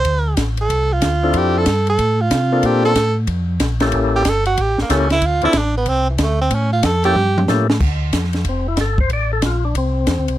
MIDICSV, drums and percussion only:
0, 0, Header, 1, 2, 480
1, 0, Start_track
1, 0, Key_signature, -1, "minor"
1, 0, Tempo, 323276
1, 79, Time_signature, 4, 2, 24, 8
1, 15420, End_track
2, 0, Start_track
2, 0, Title_t, "Drums"
2, 68, Note_on_c, 9, 51, 62
2, 75, Note_on_c, 9, 36, 22
2, 217, Note_off_c, 9, 51, 0
2, 223, Note_off_c, 9, 36, 0
2, 548, Note_on_c, 9, 44, 65
2, 548, Note_on_c, 9, 51, 74
2, 554, Note_on_c, 9, 36, 24
2, 555, Note_on_c, 9, 38, 70
2, 696, Note_off_c, 9, 44, 0
2, 696, Note_off_c, 9, 51, 0
2, 702, Note_off_c, 9, 36, 0
2, 703, Note_off_c, 9, 38, 0
2, 850, Note_on_c, 9, 51, 46
2, 998, Note_off_c, 9, 51, 0
2, 1037, Note_on_c, 9, 36, 20
2, 1038, Note_on_c, 9, 51, 62
2, 1186, Note_off_c, 9, 36, 0
2, 1187, Note_off_c, 9, 51, 0
2, 1508, Note_on_c, 9, 44, 52
2, 1508, Note_on_c, 9, 51, 72
2, 1514, Note_on_c, 9, 36, 24
2, 1515, Note_on_c, 9, 38, 71
2, 1656, Note_off_c, 9, 44, 0
2, 1656, Note_off_c, 9, 51, 0
2, 1663, Note_off_c, 9, 36, 0
2, 1664, Note_off_c, 9, 38, 0
2, 1983, Note_on_c, 9, 51, 63
2, 1992, Note_on_c, 9, 36, 25
2, 2131, Note_off_c, 9, 51, 0
2, 2141, Note_off_c, 9, 36, 0
2, 2461, Note_on_c, 9, 44, 63
2, 2461, Note_on_c, 9, 51, 68
2, 2468, Note_on_c, 9, 38, 74
2, 2471, Note_on_c, 9, 36, 26
2, 2609, Note_off_c, 9, 44, 0
2, 2609, Note_off_c, 9, 51, 0
2, 2617, Note_off_c, 9, 38, 0
2, 2619, Note_off_c, 9, 36, 0
2, 2773, Note_on_c, 9, 51, 47
2, 2921, Note_off_c, 9, 51, 0
2, 2949, Note_on_c, 9, 51, 63
2, 2952, Note_on_c, 9, 36, 25
2, 3097, Note_off_c, 9, 51, 0
2, 3100, Note_off_c, 9, 36, 0
2, 3426, Note_on_c, 9, 44, 60
2, 3426, Note_on_c, 9, 51, 72
2, 3430, Note_on_c, 9, 36, 20
2, 3433, Note_on_c, 9, 38, 72
2, 3574, Note_off_c, 9, 44, 0
2, 3574, Note_off_c, 9, 51, 0
2, 3579, Note_off_c, 9, 36, 0
2, 3582, Note_off_c, 9, 38, 0
2, 3902, Note_on_c, 9, 51, 62
2, 3907, Note_on_c, 9, 36, 20
2, 4050, Note_off_c, 9, 51, 0
2, 4055, Note_off_c, 9, 36, 0
2, 4213, Note_on_c, 9, 38, 35
2, 4362, Note_off_c, 9, 38, 0
2, 4387, Note_on_c, 9, 44, 58
2, 4387, Note_on_c, 9, 51, 74
2, 4389, Note_on_c, 9, 36, 20
2, 4394, Note_on_c, 9, 38, 71
2, 4535, Note_off_c, 9, 44, 0
2, 4535, Note_off_c, 9, 51, 0
2, 4537, Note_off_c, 9, 36, 0
2, 4543, Note_off_c, 9, 38, 0
2, 4858, Note_on_c, 9, 51, 60
2, 4868, Note_on_c, 9, 36, 26
2, 5007, Note_off_c, 9, 51, 0
2, 5016, Note_off_c, 9, 36, 0
2, 5341, Note_on_c, 9, 44, 54
2, 5341, Note_on_c, 9, 51, 74
2, 5349, Note_on_c, 9, 38, 70
2, 5352, Note_on_c, 9, 36, 22
2, 5490, Note_off_c, 9, 44, 0
2, 5490, Note_off_c, 9, 51, 0
2, 5497, Note_off_c, 9, 38, 0
2, 5500, Note_off_c, 9, 36, 0
2, 5645, Note_on_c, 9, 51, 52
2, 5652, Note_on_c, 9, 38, 67
2, 5793, Note_off_c, 9, 51, 0
2, 5801, Note_off_c, 9, 38, 0
2, 5816, Note_on_c, 9, 51, 61
2, 5830, Note_on_c, 9, 36, 25
2, 5965, Note_off_c, 9, 51, 0
2, 5978, Note_off_c, 9, 36, 0
2, 6307, Note_on_c, 9, 44, 67
2, 6307, Note_on_c, 9, 51, 73
2, 6314, Note_on_c, 9, 36, 26
2, 6314, Note_on_c, 9, 38, 76
2, 6455, Note_off_c, 9, 44, 0
2, 6455, Note_off_c, 9, 51, 0
2, 6462, Note_off_c, 9, 36, 0
2, 6463, Note_off_c, 9, 38, 0
2, 6614, Note_on_c, 9, 51, 47
2, 6762, Note_off_c, 9, 51, 0
2, 6791, Note_on_c, 9, 51, 67
2, 6796, Note_on_c, 9, 36, 19
2, 6940, Note_off_c, 9, 51, 0
2, 6945, Note_off_c, 9, 36, 0
2, 7102, Note_on_c, 9, 38, 50
2, 7251, Note_off_c, 9, 38, 0
2, 7271, Note_on_c, 9, 44, 59
2, 7271, Note_on_c, 9, 51, 68
2, 7274, Note_on_c, 9, 36, 22
2, 7279, Note_on_c, 9, 38, 72
2, 7420, Note_off_c, 9, 44, 0
2, 7420, Note_off_c, 9, 51, 0
2, 7423, Note_off_c, 9, 36, 0
2, 7427, Note_off_c, 9, 38, 0
2, 7575, Note_on_c, 9, 51, 54
2, 7583, Note_on_c, 9, 38, 60
2, 7724, Note_off_c, 9, 51, 0
2, 7731, Note_off_c, 9, 38, 0
2, 7744, Note_on_c, 9, 51, 65
2, 7751, Note_on_c, 9, 36, 19
2, 7893, Note_off_c, 9, 51, 0
2, 7900, Note_off_c, 9, 36, 0
2, 8040, Note_on_c, 9, 51, 44
2, 8188, Note_off_c, 9, 51, 0
2, 8209, Note_on_c, 9, 44, 55
2, 8209, Note_on_c, 9, 51, 73
2, 8216, Note_on_c, 9, 38, 77
2, 8226, Note_on_c, 9, 36, 27
2, 8357, Note_off_c, 9, 44, 0
2, 8357, Note_off_c, 9, 51, 0
2, 8365, Note_off_c, 9, 38, 0
2, 8375, Note_off_c, 9, 36, 0
2, 8696, Note_on_c, 9, 51, 62
2, 8707, Note_on_c, 9, 36, 22
2, 8845, Note_off_c, 9, 51, 0
2, 8855, Note_off_c, 9, 36, 0
2, 9180, Note_on_c, 9, 44, 62
2, 9180, Note_on_c, 9, 51, 70
2, 9187, Note_on_c, 9, 36, 21
2, 9187, Note_on_c, 9, 38, 73
2, 9328, Note_off_c, 9, 44, 0
2, 9328, Note_off_c, 9, 51, 0
2, 9336, Note_off_c, 9, 36, 0
2, 9336, Note_off_c, 9, 38, 0
2, 9659, Note_on_c, 9, 51, 74
2, 9666, Note_on_c, 9, 36, 20
2, 9808, Note_off_c, 9, 51, 0
2, 9814, Note_off_c, 9, 36, 0
2, 10139, Note_on_c, 9, 44, 61
2, 10139, Note_on_c, 9, 51, 75
2, 10147, Note_on_c, 9, 36, 26
2, 10147, Note_on_c, 9, 38, 78
2, 10288, Note_off_c, 9, 44, 0
2, 10288, Note_off_c, 9, 51, 0
2, 10295, Note_off_c, 9, 36, 0
2, 10295, Note_off_c, 9, 38, 0
2, 10449, Note_on_c, 9, 51, 53
2, 10597, Note_off_c, 9, 51, 0
2, 10627, Note_on_c, 9, 47, 49
2, 10776, Note_off_c, 9, 47, 0
2, 10955, Note_on_c, 9, 47, 79
2, 11103, Note_on_c, 9, 44, 55
2, 11104, Note_off_c, 9, 47, 0
2, 11111, Note_on_c, 9, 38, 74
2, 11252, Note_off_c, 9, 44, 0
2, 11259, Note_off_c, 9, 38, 0
2, 11428, Note_on_c, 9, 38, 106
2, 11577, Note_off_c, 9, 38, 0
2, 11587, Note_on_c, 9, 49, 72
2, 11590, Note_on_c, 9, 36, 73
2, 11736, Note_off_c, 9, 49, 0
2, 11738, Note_off_c, 9, 36, 0
2, 12066, Note_on_c, 9, 44, 64
2, 12066, Note_on_c, 9, 51, 69
2, 12070, Note_on_c, 9, 36, 23
2, 12074, Note_on_c, 9, 38, 69
2, 12215, Note_off_c, 9, 44, 0
2, 12215, Note_off_c, 9, 51, 0
2, 12219, Note_off_c, 9, 36, 0
2, 12222, Note_off_c, 9, 38, 0
2, 12238, Note_on_c, 9, 38, 29
2, 12367, Note_on_c, 9, 51, 46
2, 12386, Note_off_c, 9, 38, 0
2, 12389, Note_on_c, 9, 38, 44
2, 12516, Note_off_c, 9, 51, 0
2, 12538, Note_off_c, 9, 38, 0
2, 12540, Note_on_c, 9, 51, 55
2, 12548, Note_on_c, 9, 36, 23
2, 12688, Note_off_c, 9, 51, 0
2, 12697, Note_off_c, 9, 36, 0
2, 13018, Note_on_c, 9, 44, 58
2, 13018, Note_on_c, 9, 51, 63
2, 13026, Note_on_c, 9, 38, 64
2, 13029, Note_on_c, 9, 36, 19
2, 13167, Note_off_c, 9, 44, 0
2, 13167, Note_off_c, 9, 51, 0
2, 13174, Note_off_c, 9, 38, 0
2, 13178, Note_off_c, 9, 36, 0
2, 13336, Note_on_c, 9, 36, 67
2, 13484, Note_off_c, 9, 36, 0
2, 13505, Note_on_c, 9, 51, 59
2, 13513, Note_on_c, 9, 36, 19
2, 13654, Note_off_c, 9, 51, 0
2, 13661, Note_off_c, 9, 36, 0
2, 13986, Note_on_c, 9, 44, 59
2, 13986, Note_on_c, 9, 51, 73
2, 13993, Note_on_c, 9, 38, 70
2, 13995, Note_on_c, 9, 36, 25
2, 14134, Note_off_c, 9, 44, 0
2, 14134, Note_off_c, 9, 51, 0
2, 14142, Note_off_c, 9, 38, 0
2, 14143, Note_off_c, 9, 36, 0
2, 14476, Note_on_c, 9, 51, 65
2, 14478, Note_on_c, 9, 36, 24
2, 14624, Note_off_c, 9, 51, 0
2, 14626, Note_off_c, 9, 36, 0
2, 14947, Note_on_c, 9, 44, 50
2, 14947, Note_on_c, 9, 51, 65
2, 14954, Note_on_c, 9, 38, 68
2, 14959, Note_on_c, 9, 36, 23
2, 15096, Note_off_c, 9, 44, 0
2, 15096, Note_off_c, 9, 51, 0
2, 15103, Note_off_c, 9, 38, 0
2, 15107, Note_off_c, 9, 36, 0
2, 15265, Note_on_c, 9, 51, 50
2, 15413, Note_off_c, 9, 51, 0
2, 15420, End_track
0, 0, End_of_file